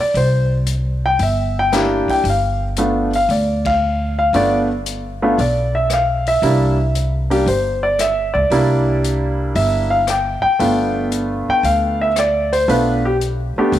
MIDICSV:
0, 0, Header, 1, 5, 480
1, 0, Start_track
1, 0, Tempo, 522193
1, 142, Time_signature, 4, 2, 24, 8
1, 12677, End_track
2, 0, Start_track
2, 0, Title_t, "Grand piano"
2, 0, Program_c, 0, 0
2, 4, Note_on_c, 0, 74, 67
2, 143, Note_off_c, 0, 74, 0
2, 156, Note_on_c, 0, 72, 67
2, 471, Note_off_c, 0, 72, 0
2, 971, Note_on_c, 0, 79, 82
2, 1107, Note_off_c, 0, 79, 0
2, 1129, Note_on_c, 0, 76, 54
2, 1438, Note_off_c, 0, 76, 0
2, 1464, Note_on_c, 0, 79, 81
2, 1588, Note_on_c, 0, 58, 59
2, 1590, Note_on_c, 0, 62, 58
2, 1591, Note_on_c, 0, 64, 57
2, 1594, Note_on_c, 0, 67, 64
2, 1897, Note_off_c, 0, 79, 0
2, 1933, Note_on_c, 0, 79, 67
2, 2066, Note_off_c, 0, 58, 0
2, 2067, Note_off_c, 0, 62, 0
2, 2068, Note_off_c, 0, 64, 0
2, 2069, Note_off_c, 0, 67, 0
2, 2069, Note_off_c, 0, 79, 0
2, 2111, Note_on_c, 0, 77, 65
2, 2410, Note_off_c, 0, 77, 0
2, 2556, Note_on_c, 0, 57, 56
2, 2561, Note_on_c, 0, 59, 49
2, 2561, Note_on_c, 0, 62, 48
2, 2561, Note_on_c, 0, 65, 57
2, 2849, Note_off_c, 0, 57, 0
2, 2851, Note_off_c, 0, 59, 0
2, 2851, Note_off_c, 0, 62, 0
2, 2851, Note_off_c, 0, 65, 0
2, 2900, Note_on_c, 0, 77, 74
2, 3033, Note_off_c, 0, 77, 0
2, 3042, Note_on_c, 0, 74, 50
2, 3355, Note_off_c, 0, 74, 0
2, 3367, Note_on_c, 0, 77, 82
2, 3809, Note_off_c, 0, 77, 0
2, 3848, Note_on_c, 0, 77, 77
2, 3987, Note_off_c, 0, 77, 0
2, 3991, Note_on_c, 0, 62, 58
2, 3994, Note_on_c, 0, 65, 64
2, 3996, Note_on_c, 0, 57, 61
2, 3999, Note_on_c, 0, 59, 57
2, 4007, Note_on_c, 0, 74, 70
2, 4199, Note_off_c, 0, 74, 0
2, 4286, Note_off_c, 0, 62, 0
2, 4288, Note_off_c, 0, 65, 0
2, 4289, Note_off_c, 0, 57, 0
2, 4291, Note_off_c, 0, 59, 0
2, 4803, Note_on_c, 0, 57, 61
2, 4805, Note_on_c, 0, 59, 53
2, 4807, Note_on_c, 0, 65, 69
2, 4810, Note_on_c, 0, 62, 55
2, 4934, Note_off_c, 0, 57, 0
2, 4935, Note_off_c, 0, 59, 0
2, 4936, Note_off_c, 0, 65, 0
2, 4937, Note_off_c, 0, 62, 0
2, 4963, Note_on_c, 0, 74, 61
2, 5276, Note_off_c, 0, 74, 0
2, 5285, Note_on_c, 0, 76, 71
2, 5425, Note_off_c, 0, 76, 0
2, 5453, Note_on_c, 0, 77, 77
2, 5761, Note_off_c, 0, 77, 0
2, 5770, Note_on_c, 0, 76, 77
2, 5911, Note_on_c, 0, 58, 53
2, 5914, Note_on_c, 0, 55, 62
2, 5919, Note_on_c, 0, 62, 52
2, 5920, Note_on_c, 0, 64, 65
2, 6207, Note_off_c, 0, 58, 0
2, 6208, Note_off_c, 0, 55, 0
2, 6211, Note_off_c, 0, 62, 0
2, 6211, Note_off_c, 0, 64, 0
2, 6356, Note_off_c, 0, 76, 0
2, 6713, Note_on_c, 0, 62, 51
2, 6714, Note_on_c, 0, 55, 55
2, 6718, Note_on_c, 0, 58, 49
2, 6721, Note_on_c, 0, 67, 68
2, 6849, Note_off_c, 0, 62, 0
2, 6850, Note_off_c, 0, 55, 0
2, 6852, Note_off_c, 0, 58, 0
2, 6853, Note_off_c, 0, 67, 0
2, 6878, Note_on_c, 0, 72, 65
2, 7193, Note_off_c, 0, 72, 0
2, 7198, Note_on_c, 0, 74, 72
2, 7342, Note_off_c, 0, 74, 0
2, 7357, Note_on_c, 0, 76, 76
2, 7663, Note_on_c, 0, 74, 68
2, 7673, Note_off_c, 0, 76, 0
2, 7826, Note_on_c, 0, 55, 66
2, 7828, Note_on_c, 0, 58, 56
2, 7831, Note_on_c, 0, 62, 57
2, 7832, Note_on_c, 0, 64, 68
2, 8262, Note_off_c, 0, 74, 0
2, 8786, Note_on_c, 0, 76, 69
2, 9103, Note_on_c, 0, 77, 78
2, 9107, Note_off_c, 0, 76, 0
2, 9176, Note_off_c, 0, 55, 0
2, 9177, Note_off_c, 0, 58, 0
2, 9178, Note_off_c, 0, 62, 0
2, 9179, Note_off_c, 0, 64, 0
2, 9254, Note_off_c, 0, 77, 0
2, 9283, Note_on_c, 0, 79, 67
2, 9564, Note_off_c, 0, 79, 0
2, 9578, Note_on_c, 0, 79, 84
2, 9739, Note_on_c, 0, 57, 59
2, 9744, Note_on_c, 0, 65, 65
2, 9745, Note_on_c, 0, 59, 52
2, 9753, Note_on_c, 0, 62, 51
2, 10178, Note_off_c, 0, 79, 0
2, 10569, Note_on_c, 0, 79, 83
2, 10706, Note_off_c, 0, 79, 0
2, 10709, Note_on_c, 0, 77, 75
2, 11027, Note_off_c, 0, 77, 0
2, 11044, Note_on_c, 0, 76, 77
2, 11091, Note_off_c, 0, 57, 0
2, 11094, Note_off_c, 0, 59, 0
2, 11094, Note_off_c, 0, 65, 0
2, 11098, Note_off_c, 0, 62, 0
2, 11183, Note_off_c, 0, 76, 0
2, 11202, Note_on_c, 0, 74, 69
2, 11514, Note_off_c, 0, 74, 0
2, 11514, Note_on_c, 0, 72, 79
2, 11657, Note_on_c, 0, 57, 56
2, 11658, Note_off_c, 0, 72, 0
2, 11659, Note_on_c, 0, 59, 52
2, 11664, Note_on_c, 0, 62, 55
2, 11670, Note_on_c, 0, 65, 61
2, 11670, Note_on_c, 0, 71, 66
2, 11957, Note_off_c, 0, 57, 0
2, 11959, Note_off_c, 0, 59, 0
2, 11961, Note_off_c, 0, 62, 0
2, 11964, Note_off_c, 0, 65, 0
2, 11987, Note_off_c, 0, 71, 0
2, 11999, Note_on_c, 0, 67, 74
2, 12086, Note_off_c, 0, 67, 0
2, 12483, Note_on_c, 0, 57, 66
2, 12487, Note_on_c, 0, 59, 54
2, 12490, Note_on_c, 0, 62, 57
2, 12490, Note_on_c, 0, 67, 71
2, 12612, Note_off_c, 0, 57, 0
2, 12613, Note_off_c, 0, 59, 0
2, 12615, Note_off_c, 0, 62, 0
2, 12615, Note_off_c, 0, 67, 0
2, 12677, End_track
3, 0, Start_track
3, 0, Title_t, "Upright bass"
3, 0, Program_c, 1, 32
3, 131, Note_on_c, 1, 36, 83
3, 1061, Note_off_c, 1, 36, 0
3, 1095, Note_on_c, 1, 31, 80
3, 1874, Note_off_c, 1, 31, 0
3, 2056, Note_on_c, 1, 31, 78
3, 2984, Note_off_c, 1, 31, 0
3, 3021, Note_on_c, 1, 38, 81
3, 3947, Note_off_c, 1, 38, 0
3, 3979, Note_on_c, 1, 31, 73
3, 4906, Note_off_c, 1, 31, 0
3, 4947, Note_on_c, 1, 35, 76
3, 5870, Note_off_c, 1, 35, 0
3, 5901, Note_on_c, 1, 36, 80
3, 6827, Note_off_c, 1, 36, 0
3, 6858, Note_on_c, 1, 31, 77
3, 7636, Note_off_c, 1, 31, 0
3, 7673, Note_on_c, 1, 37, 63
3, 7809, Note_off_c, 1, 37, 0
3, 7814, Note_on_c, 1, 36, 73
3, 8743, Note_off_c, 1, 36, 0
3, 8781, Note_on_c, 1, 31, 82
3, 9557, Note_off_c, 1, 31, 0
3, 9738, Note_on_c, 1, 31, 76
3, 10515, Note_off_c, 1, 31, 0
3, 10692, Note_on_c, 1, 38, 81
3, 11620, Note_off_c, 1, 38, 0
3, 11655, Note_on_c, 1, 35, 76
3, 12432, Note_off_c, 1, 35, 0
3, 12613, Note_on_c, 1, 38, 80
3, 12677, Note_off_c, 1, 38, 0
3, 12677, End_track
4, 0, Start_track
4, 0, Title_t, "Muted upright bass strokes"
4, 1911, Note_on_c, 9, 29, 36
4, 2003, Note_off_c, 9, 29, 0
4, 9587, Note_on_c, 9, 29, 36
4, 9679, Note_off_c, 9, 29, 0
4, 10555, Note_on_c, 9, 29, 39
4, 10647, Note_off_c, 9, 29, 0
4, 12466, Note_on_c, 9, 29, 39
4, 12558, Note_off_c, 9, 29, 0
4, 12677, End_track
5, 0, Start_track
5, 0, Title_t, "Drums"
5, 139, Note_on_c, 9, 46, 44
5, 231, Note_off_c, 9, 46, 0
5, 611, Note_on_c, 9, 42, 48
5, 703, Note_off_c, 9, 42, 0
5, 1094, Note_on_c, 9, 46, 41
5, 1186, Note_off_c, 9, 46, 0
5, 1585, Note_on_c, 9, 37, 59
5, 1585, Note_on_c, 9, 38, 36
5, 1586, Note_on_c, 9, 42, 51
5, 1677, Note_off_c, 9, 37, 0
5, 1677, Note_off_c, 9, 38, 0
5, 1678, Note_off_c, 9, 42, 0
5, 1915, Note_on_c, 9, 36, 47
5, 1923, Note_on_c, 9, 46, 36
5, 2007, Note_off_c, 9, 36, 0
5, 2015, Note_off_c, 9, 46, 0
5, 2066, Note_on_c, 9, 46, 44
5, 2158, Note_off_c, 9, 46, 0
5, 2541, Note_on_c, 9, 42, 46
5, 2633, Note_off_c, 9, 42, 0
5, 2879, Note_on_c, 9, 46, 33
5, 2971, Note_off_c, 9, 46, 0
5, 3030, Note_on_c, 9, 46, 39
5, 3121, Note_off_c, 9, 46, 0
5, 3357, Note_on_c, 9, 36, 74
5, 3359, Note_on_c, 9, 51, 60
5, 3449, Note_off_c, 9, 36, 0
5, 3451, Note_off_c, 9, 51, 0
5, 3988, Note_on_c, 9, 46, 39
5, 4080, Note_off_c, 9, 46, 0
5, 4467, Note_on_c, 9, 42, 50
5, 4559, Note_off_c, 9, 42, 0
5, 4951, Note_on_c, 9, 46, 43
5, 5043, Note_off_c, 9, 46, 0
5, 5421, Note_on_c, 9, 37, 58
5, 5422, Note_on_c, 9, 42, 49
5, 5513, Note_off_c, 9, 37, 0
5, 5514, Note_off_c, 9, 42, 0
5, 5759, Note_on_c, 9, 46, 35
5, 5851, Note_off_c, 9, 46, 0
5, 5908, Note_on_c, 9, 46, 44
5, 6000, Note_off_c, 9, 46, 0
5, 6389, Note_on_c, 9, 42, 48
5, 6481, Note_off_c, 9, 42, 0
5, 6720, Note_on_c, 9, 46, 34
5, 6812, Note_off_c, 9, 46, 0
5, 6870, Note_on_c, 9, 46, 44
5, 6961, Note_off_c, 9, 46, 0
5, 7344, Note_on_c, 9, 37, 55
5, 7345, Note_on_c, 9, 42, 51
5, 7436, Note_off_c, 9, 37, 0
5, 7437, Note_off_c, 9, 42, 0
5, 7825, Note_on_c, 9, 46, 44
5, 7917, Note_off_c, 9, 46, 0
5, 8312, Note_on_c, 9, 42, 44
5, 8404, Note_off_c, 9, 42, 0
5, 8782, Note_on_c, 9, 46, 43
5, 8874, Note_off_c, 9, 46, 0
5, 9259, Note_on_c, 9, 37, 62
5, 9260, Note_on_c, 9, 42, 52
5, 9351, Note_off_c, 9, 37, 0
5, 9352, Note_off_c, 9, 42, 0
5, 9743, Note_on_c, 9, 46, 43
5, 9835, Note_off_c, 9, 46, 0
5, 10218, Note_on_c, 9, 42, 49
5, 10310, Note_off_c, 9, 42, 0
5, 10702, Note_on_c, 9, 46, 42
5, 10794, Note_off_c, 9, 46, 0
5, 11178, Note_on_c, 9, 37, 58
5, 11179, Note_on_c, 9, 42, 50
5, 11270, Note_off_c, 9, 37, 0
5, 11271, Note_off_c, 9, 42, 0
5, 11516, Note_on_c, 9, 46, 37
5, 11608, Note_off_c, 9, 46, 0
5, 11667, Note_on_c, 9, 46, 44
5, 11759, Note_off_c, 9, 46, 0
5, 12144, Note_on_c, 9, 42, 46
5, 12236, Note_off_c, 9, 42, 0
5, 12621, Note_on_c, 9, 46, 40
5, 12677, Note_off_c, 9, 46, 0
5, 12677, End_track
0, 0, End_of_file